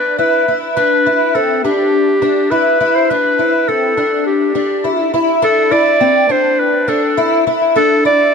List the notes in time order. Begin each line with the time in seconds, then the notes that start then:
Already playing: D4 B4
0.18 E4 B4
0.48 E4
0.76 D4 B4
1.06 E4
1.35 C4 A4
1.64 D4 G4
2.22 D4
2.51 E4 B4
2.80 E4
2.95 C5
3.10 D4 B4
3.39 E4
3.68 C4 A4
3.97 D4
4.27 G4
4.55 D4
4.84 E4
5.14 E4
5.42 D4 A4
5.71 E4 D5
6.00 C4
6.29 D4 C5
6.59 B4
6.88 D4 A4
7.17 E4
7.47 E4
7.76 D4 A4
8.05 E4 D5